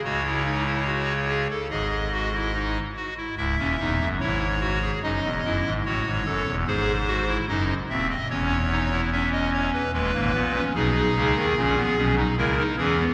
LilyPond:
<<
  \new Staff \with { instrumentName = "Pipe organ" } { \time 4/4 \key cis \minor \tempo 4 = 73 << { cis''2 dis''4. r8 | e''4 cis''4 dis''4 cis''4 | bis'4 dis''8 e''16 dis''16 cis''4 e''16 dis''16 cis''16 b'16 | b'4 gis'2 ais'8 gis'8 | } \\ { fis'16 e'16 dis'16 e'16 fis'8 gis'16 a'16 gis'8 fis'16 e'16 dis'8 fis'16 e'16 | e'16 cis'16 dis'8 e'8 fis'16 gis'16 dis'8 e'8 fis'8 a'8 | gis'8 fis'16 e'16 dis'8 bis8 cis'8 dis'16 e'16 cis'4 | gis16 ais16 b16 cis'16 dis'4 cis'16 b16 cis'16 dis'16 e'16 dis'16 cis'16 b16 | } >> }
  \new Staff \with { instrumentName = "Pipe organ" } { \clef bass \time 4/4 \key cis \minor <cis, cis>2 <gis,, gis,>4. r8 | <cis,, cis,>16 <dis,, dis,>16 <e,, e,>16 <fis,, fis,>16 <gis,, gis,>4 <fis,, fis,>16 <e,, e,>16 <fis,, fis,>16 <gis,, gis,>16 <a,, a,>16 <gis,, gis,>16 <fis,, fis,>16 <e,, e,>16 | <gis,, gis,>4 <fis,, fis,>8 <dis,, dis,>8 <e,, e,>2 | <dis,, dis,>16 <gis,, gis,>16 <ais,, ais,>8 <b,, b,>8 <cis, cis>16 <dis, dis>16 <ais,, ais,>8 <b,, b,>8 <cis, cis>8 <e, e>8 | }
>>